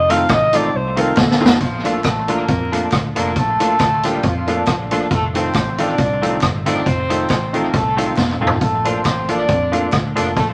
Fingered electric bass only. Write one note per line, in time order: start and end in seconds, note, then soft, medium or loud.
0.00 0.23 F1 loud
0.30 0.67 A1 medium
0.74 1.11 C2 medium
1.17 1.38 D2 loud
1.42 1.58 F1 medium
1.60 1.98 A#1 loud
2.05 2.42 A1 loud
2.48 2.86 F2 medium
2.92 3.13 D2 medium
3.17 3.33 F1 medium
3.36 3.73 A#1 loud
3.80 4.17 D2 medium
4.24 4.61 F2 medium
4.67 5.04 A#1 medium
5.11 5.48 F1 loud
5.55 5.92 A1 loud
5.99 6.44 C2 loud
6.43 6.80 G1 medium
6.86 7.23 F1 loud
7.30 7.67 A1 medium
7.74 8.11 C2 medium
8.18 8.38 F1 medium
8.42 8.58 F1 medium
8.61 8.99 A#1 loud
9.05 9.42 A1 loud
9.49 9.86 F2 medium
9.93 10.13 D2 loud
10.17 10.34 F1 medium
10.37 10.54 A#1 loud